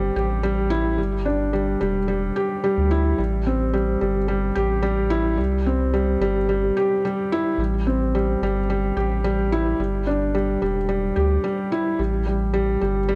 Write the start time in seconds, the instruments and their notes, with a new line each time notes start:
Already playing: analog synth bass G1, felt piano G3 C4
0.16 analog synth bass A1, felt piano G4
0.43 felt piano G3
0.70 felt piano E4
0.98 analog synth bass G1, felt piano G3
1.25 felt piano D4
1.53 felt piano G3
1.81 analog synth bass E1, felt piano G3
2.08 felt piano G3
2.36 felt piano G4
2.64 felt piano G3
2.78 analog synth bass D2
2.91 felt piano E4
3.18 analog synth bass A1, felt piano G3
3.47 felt piano C4
3.74 felt piano G3
4.01 analog synth bass G1, felt piano G3
4.28 felt piano G3
4.55 analog synth bass A1, felt piano G4
4.83 felt piano G3
5.10 felt piano E4
5.37 analog synth bass C2, felt piano G3
5.66 felt piano C4
5.94 felt piano G3
6.20 analog synth bass G1, felt piano G3
6.49 felt piano G3
6.77 felt piano G4
7.05 felt piano G3
7.32 felt piano E4
7.58 analog synth bass A1, felt piano G3
7.87 felt piano C4
8.15 felt piano G3
8.42 analog synth bass G1, felt piano G3
8.70 felt piano G3
8.96 analog synth bass A1, felt piano G4
9.24 felt piano G3
9.52 felt piano E4
9.79 analog synth bass G1, felt piano G3
10.07 felt piano D4
10.35 felt piano G3
10.62 analog synth bass E1, felt piano G3
10.89 felt piano G3
11.16 analog synth bass D2, felt piano G4
11.44 felt piano G3
11.72 felt piano E4
11.99 analog synth bass A1, felt piano G3
12.27 felt piano G3
12.54 felt piano G3
12.81 analog synth bass G1, felt piano G3
13.09 felt piano G3